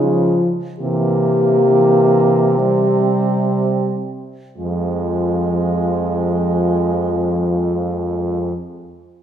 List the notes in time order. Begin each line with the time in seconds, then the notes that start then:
Already playing: C#3 G#3
0.01 F3 F4
0.80 C3 E3 A#3 G4
1.68 E3
2.56 G3 C4
4.57 F2 F3 G#3 F4